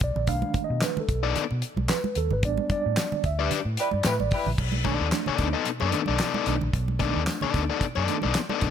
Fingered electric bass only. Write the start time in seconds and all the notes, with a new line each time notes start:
0.01 B1
0.16 A#1
0.28 B1
0.55 muted fingered electric bass stroke
0.70 B2
1.09 B1
1.36 muted fingered electric bass stroke
1.51 B2
1.76 B1
2.16 D#2
2.31 G#1
2.43 A1
2.70 muted fingered electric bass stroke
2.86 A2
3.24 D2
3.51 muted fingered electric bass stroke
3.65 A2
3.93 G2
4.05 A2
4.20 A1
4.47 A#1
4.58 B1
5.01 D#2
5.29 muted fingered electric bass stroke
5.39 D2
5.82 F#2
6.09 B1
6.47 B1
6.63 A#1
6.74 B1
7.16 D#2
7.43 muted fingered electric bass stroke
7.54 D2
7.97 F#2
8.25 B1
8.62 B1